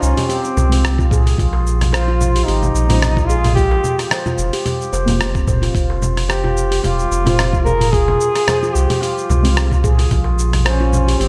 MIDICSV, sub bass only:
0, 0, Header, 1, 2, 480
1, 0, Start_track
1, 0, Key_signature, -4, "minor"
1, 0, Tempo, 545455
1, 1220, Time_signature, 4, 2, 24, 8
1, 9927, End_track
2, 0, Start_track
2, 0, Title_t, "Sub bass"
2, 0, Program_c, 0, 38
2, 18, Note_on_c, 0, 36, 92
2, 123, Note_off_c, 0, 36, 0
2, 500, Note_on_c, 0, 36, 91
2, 1185, Note_off_c, 0, 36, 0
2, 1216, Note_on_c, 0, 34, 94
2, 2143, Note_off_c, 0, 34, 0
2, 2183, Note_on_c, 0, 32, 90
2, 2378, Note_off_c, 0, 32, 0
2, 2417, Note_on_c, 0, 34, 100
2, 3343, Note_off_c, 0, 34, 0
2, 3856, Note_on_c, 0, 29, 91
2, 3962, Note_off_c, 0, 29, 0
2, 4334, Note_on_c, 0, 29, 85
2, 5022, Note_off_c, 0, 29, 0
2, 5056, Note_on_c, 0, 29, 90
2, 5983, Note_off_c, 0, 29, 0
2, 6025, Note_on_c, 0, 27, 94
2, 6219, Note_off_c, 0, 27, 0
2, 6257, Note_on_c, 0, 29, 106
2, 7184, Note_off_c, 0, 29, 0
2, 7700, Note_on_c, 0, 36, 91
2, 7804, Note_off_c, 0, 36, 0
2, 8180, Note_on_c, 0, 36, 85
2, 8865, Note_off_c, 0, 36, 0
2, 8898, Note_on_c, 0, 34, 93
2, 9824, Note_off_c, 0, 34, 0
2, 9858, Note_on_c, 0, 32, 90
2, 9927, Note_off_c, 0, 32, 0
2, 9927, End_track
0, 0, End_of_file